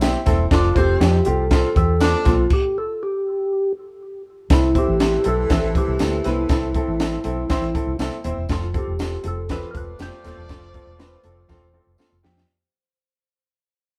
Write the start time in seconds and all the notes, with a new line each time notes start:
Already playing: B1
0.01 C4 E4 G4, snare, closed hi-hat, tambourine, high conga
0.26 E1 C4 E4 A4, kick, snare, closed hi-hat, high conga
0.51 F1 C4 D4 F4 A4 D5, kick, snare, closed hi-hat, tambourine
0.75 F1 C4 F4 G4 A4 C5, kick, closed hi-hat, muted conga
1.00 F2 C4 F4 G4, snare, closed hi-hat, tambourine, high conga
1.25 C2 C4 F4 G4 A4, closed hi-hat, muted conga
1.51 C4 F4 A4, kick, snare, closed hi-hat, tambourine
1.75 E2 C4 F4 G4 A4, kick, closed hi-hat
2.00 C4 D4 F4 A4 D5, snare, closed hi-hat, tambourine, high conga
2.25 B1 C4 F4 A4, kick, snare, closed hi-hat, high conga
2.50 G4, kick, crash
2.78 A4
3.03 G4
4.50 C2 E3 A3 C4 E4 A4, kick, snare, closed hi-hat, tambourine
4.75 C4 E4 G4 C5, kick, closed hi-hat, muted conga
4.88 A1
5.00 C4 E4 C5, snare, closed hi-hat, tambourine, high conga
5.24 B1 C4 E4 A4, closed hi-hat, muted conga
5.28 A4
5.50 A1 C4 E4 A4, kick, snare, closed hi-hat, tambourine, low conga
5.75 C4 E4 G4 C5, kick, closed hi-hat, muted conga
5.88 C2
5.99 D2 C4 E4 A4, snare, closed hi-hat, tambourine, high conga
6.24 C2 C4 E4 B4, snare, closed hi-hat, high conga
6.49 C2 C4 E4 A4, kick, snare, closed hi-hat, tambourine
6.74 C4 E4 A4, kick, closed hi-hat, muted conga
6.88 A1
7.00 C4 E4 A4, snare, closed hi-hat, tambourine, high conga
7.24 B1 C4 E4 A4, closed hi-hat, muted conga
7.49 A1 C4 E4 C5, kick, snare, closed hi-hat, tambourine, low conga
7.74 C4 E4 A4, kick, closed hi-hat, muted conga
7.87 C2
7.99 C2 C4 E4 A4, snare, closed hi-hat, tambourine, high conga
8.24 D#1 C4 E4 C5, closed hi-hat, high conga
8.37 E1
8.49 F1 C4 F4 A4, kick, snare, closed hi-hat, tambourine
8.53 F4
8.74 C4 F4 G4 A4, kick, closed hi-hat, muted conga
8.88 E1
8.99 C4 F4 A4, snare, closed hi-hat, tambourine, high conga
9.24 F1 C4 F4 A4, closed hi-hat, muted conga
9.28 A4
9.49 A3 C4 D4 F4 A4 B4 D5, kick, snare, closed hi-hat, tambourine, low conga
9.71 E1 C4 F4 A4 A#4, kick, closed hi-hat, muted conga
9.77 B4
9.99 F1 C4 F4 G4 C5, snare, closed hi-hat, tambourine, high conga
10.24 D#1 C4 F4 A4 C5, snare, closed hi-hat, high conga
10.37 E1
10.49 C4 F4 A4, kick, snare, closed hi-hat, tambourine
10.73 C4 F4 A4, kick, closed hi-hat, muted conga
10.87 E1
10.98 C4 F4 B4, snare, closed hi-hat, tambourine, high conga
11.23 F1 C4 F4 A4, closed hi-hat, muted conga
11.48 E1 C4 F4 A4, kick, snare, tambourine, low conga
11.73 C4 F4 A4
11.87 F1
11.98 C4 F4 A4, snare, tambourine, high conga
12.12 F1
12.23 F2 C4 F4 G4, snare, high conga
12.37 snare